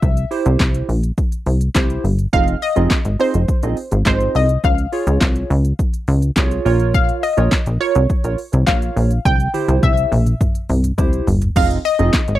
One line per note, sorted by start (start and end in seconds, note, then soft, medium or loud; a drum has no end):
0.00 0.25 C2 loud
0.00 0.85 E5 loud
0.00 kick loud
0.00 shaker medium
0.17 closed hi-hat soft
0.17 shaker soft
0.31 0.89 E4 medium
0.31 0.89 G4 medium
0.31 0.89 C5 medium
0.31 open hi-hat medium
0.31 shaker medium
0.46 0.57 C2 loud
0.46 closed hi-hat medium
0.46 shaker medium
0.59 0.83 C2 loud
0.59 kick loud
0.59 snare medium
0.59 clap loud
0.59 shaker medium
0.74 closed hi-hat medium
0.74 shaker medium
0.89 1.12 A#1 medium
0.89 open hi-hat medium
0.89 shaker soft
1.03 closed hi-hat medium
1.03 shaker medium
1.18 kick loud
1.18 shaker medium
1.32 closed hi-hat medium
1.32 shaker medium
1.46 1.70 C2 medium
1.46 open hi-hat medium
1.46 shaker medium
1.61 closed hi-hat medium
1.61 shaker medium
1.75 1.98 C2 medium
1.75 2.04 E4 medium
1.75 2.04 G4 medium
1.75 2.04 C5 loud
1.75 kick loud
1.75 snare medium
1.75 clap loud
1.75 shaker medium
1.90 closed hi-hat soft
1.90 shaker soft
2.04 2.27 G1 medium
2.04 open hi-hat medium
2.04 shaker medium
2.19 closed hi-hat medium
2.19 shaker medium
2.33 2.56 F1 loud
2.33 2.55 C4 medium
2.33 2.55 D#4 medium
2.33 2.55 F4 medium
2.33 2.55 G#4 medium
2.33 2.55 D#5 loud
2.33 2.63 F5 loud
2.33 kick loud
2.33 shaker medium
2.48 closed hi-hat soft
2.48 shaker soft
2.62 3.22 D#5 loud
2.62 open hi-hat medium
2.62 shaker medium
2.76 2.88 F1 medium
2.76 2.98 C4 medium
2.76 2.98 D#4 medium
2.76 2.98 F4 medium
2.76 2.98 G#4 medium
2.76 2.98 D#5 medium
2.76 closed hi-hat medium
2.76 shaker medium
2.90 kick loud
2.90 snare medium
2.90 clap loud
2.90 shaker medium
3.05 3.17 G#1 medium
3.05 closed hi-hat medium
3.05 shaker medium
3.19 3.41 C4 medium
3.19 3.41 D#4 medium
3.19 3.41 F4 medium
3.19 3.41 G#4 medium
3.19 4.06 C5 loud
3.19 3.41 D#5 medium
3.19 open hi-hat medium
3.19 shaker medium
3.34 3.46 F1 medium
3.34 closed hi-hat medium
3.34 shaker medium
3.48 kick loud
3.48 shaker medium
3.63 3.75 A#1 medium
3.63 3.77 C4 medium
3.63 3.77 D#4 medium
3.63 3.77 F4 medium
3.63 3.78 G#4 medium
3.63 3.78 D#5 medium
3.63 closed hi-hat medium
3.63 shaker medium
3.77 open hi-hat medium
3.77 shaker medium
3.91 4.03 G#1 medium
3.91 3.99 G#4 medium
3.91 3.99 F5 medium
3.91 closed hi-hat medium
3.91 shaker medium
4.05 4.29 G#1 loud
4.05 4.50 C4 medium
4.05 4.50 D#4 medium
4.05 4.50 F4 medium
4.05 4.50 G#4 medium
4.05 4.36 C5 medium
4.05 4.50 D#5 medium
4.05 kick loud
4.05 snare medium
4.05 clap loud
4.05 shaker medium
4.20 closed hi-hat soft
4.20 shaker soft
4.35 4.58 C2 medium
4.35 4.65 D#5 medium
4.35 open hi-hat medium
4.35 shaker medium
4.49 closed hi-hat medium
4.49 shaker medium
4.64 4.87 C#2 loud
4.64 6.62 F5 loud
4.64 kick loud
4.64 shaker medium
4.78 closed hi-hat medium
4.78 shaker medium
4.92 5.50 F4 medium
4.92 5.51 G#4 medium
4.92 5.51 C#5 medium
4.92 open hi-hat medium
4.92 shaker medium
5.07 5.19 C#2 loud
5.07 closed hi-hat medium
5.07 shaker medium
5.21 5.44 C2 loud
5.21 kick loud
5.21 snare medium
5.21 clap loud
5.21 shaker medium
5.36 closed hi-hat medium
5.36 shaker medium
5.50 5.73 C#2 loud
5.50 open hi-hat medium
5.50 shaker medium
5.65 closed hi-hat medium
5.65 shaker medium
5.79 kick loud
5.79 shaker medium
5.94 closed hi-hat medium
5.94 shaker medium
6.08 6.31 C#2 loud
6.08 open hi-hat medium
6.08 shaker medium
6.22 closed hi-hat medium
6.22 shaker medium
6.36 6.60 C2 loud
6.36 6.64 F4 medium
6.36 6.66 G#4 medium
6.36 6.64 C#5 loud
6.36 kick loud
6.36 snare medium
6.36 clap loud
6.36 shaker medium
6.51 closed hi-hat soft
6.51 shaker soft
6.65 7.12 A#1 loud
6.65 7.23 F4 loud
6.65 7.23 A#4 medium
6.65 7.23 C#5 loud
6.65 open hi-hat medium
6.65 shaker medium
6.80 closed hi-hat medium
6.80 shaker medium
6.94 7.21 F5 loud
6.94 kick loud
6.94 shaker medium
7.09 closed hi-hat soft
7.09 shaker soft
7.23 7.83 D#5 medium
7.23 open hi-hat medium
7.23 shaker medium
7.37 7.49 A#1 loud
7.37 7.59 F4 medium
7.37 7.59 A#4 medium
7.37 7.59 C#5 medium
7.37 closed hi-hat medium
7.37 shaker medium
7.51 kick loud
7.51 snare medium
7.51 clap loud
7.51 shaker medium
7.66 7.78 A#1 medium
7.66 closed hi-hat medium
7.66 shaker medium
7.80 8.03 F4 medium
7.80 8.03 A#4 medium
7.80 8.63 C#5 loud
7.80 8.03 C#5 medium
7.80 open hi-hat medium
7.80 shaker medium
7.95 8.07 C2 loud
7.95 closed hi-hat medium
7.95 shaker medium
8.10 kick loud
8.10 shaker medium
8.24 8.36 A#1 medium
8.24 8.39 F4 medium
8.24 8.39 A#4 medium
8.24 8.39 C#5 medium
8.24 closed hi-hat medium
8.24 shaker medium
8.38 open hi-hat medium
8.38 shaker medium
8.52 8.65 C2 loud
8.52 8.60 A#4 medium
8.52 8.60 C#5 medium
8.52 closed hi-hat medium
8.52 shaker medium
8.67 8.91 A#1 medium
8.67 9.11 F4 medium
8.67 9.11 A#4 medium
8.67 9.11 C#5 medium
8.67 9.27 F5 loud
8.67 kick loud
8.67 snare medium
8.67 clap loud
8.67 shaker medium
8.82 closed hi-hat soft
8.82 shaker soft
8.96 9.19 A#1 loud
8.96 open hi-hat medium
8.96 shaker medium
9.11 closed hi-hat medium
9.11 shaker medium
9.25 9.48 C2 loud
9.25 9.79 G5 loud
9.25 kick loud
9.25 high tom medium
9.25 shaker medium
9.40 closed hi-hat soft
9.40 shaker medium
9.54 10.12 E4 medium
9.54 10.12 G4 medium
9.54 10.12 C5 medium
9.54 open hi-hat medium
9.54 high tom medium
9.54 shaker medium
9.68 9.80 C2 loud
9.68 closed hi-hat medium
9.68 high tom medium
9.68 shaker medium
9.83 10.06 C2 loud
9.83 10.37 E5 medium
9.83 kick loud
9.83 mid tom medium
9.83 shaker medium
9.97 closed hi-hat medium
9.97 shaker medium
10.12 10.35 A#1 loud
10.12 open hi-hat medium
10.12 mid tom medium
10.12 shaker soft
10.26 closed hi-hat medium
10.26 mid tom medium
10.26 shaker medium
10.41 kick loud
10.41 mid tom medium
10.41 shaker medium
10.55 closed hi-hat medium
10.55 shaker medium
10.69 10.93 C2 medium
10.69 mid tom medium
10.69 open hi-hat medium
10.69 shaker medium
10.84 closed hi-hat medium
10.84 mid tom medium
10.84 shaker medium
10.98 11.21 C2 medium
10.98 11.27 E4 medium
10.98 11.27 G4 medium
10.98 11.27 C5 loud
10.98 kick loud
10.98 floor tom loud
10.98 shaker medium
11.13 closed hi-hat soft
11.13 shaker soft
11.27 11.50 G1 loud
11.27 floor tom loud
11.27 open hi-hat medium
11.27 shaker medium
11.41 closed hi-hat medium
11.41 floor tom loud
11.41 shaker medium
11.56 11.79 F1 loud
11.56 11.78 C4 medium
11.56 11.78 D#4 medium
11.56 11.78 F4 medium
11.56 11.78 G#4 medium
11.56 11.78 D#5 loud
11.56 11.70 F5 loud
11.56 kick loud
11.56 crash loud
11.56 shaker medium
11.71 closed hi-hat soft
11.71 shaker soft
11.85 12.37 D#5 loud
11.85 open hi-hat medium
11.85 shaker medium
11.99 12.11 F1 medium
11.99 12.21 C4 medium
11.99 12.21 D#4 medium
11.99 12.21 F4 medium
11.99 12.21 G#4 medium
11.99 12.21 D#5 medium
11.99 closed hi-hat medium
11.99 shaker medium
12.13 kick loud
12.13 snare medium
12.13 clap loud
12.13 shaker medium
12.28 12.39 G#1 medium
12.28 closed hi-hat medium
12.28 shaker medium
12.35 12.39 C#5 medium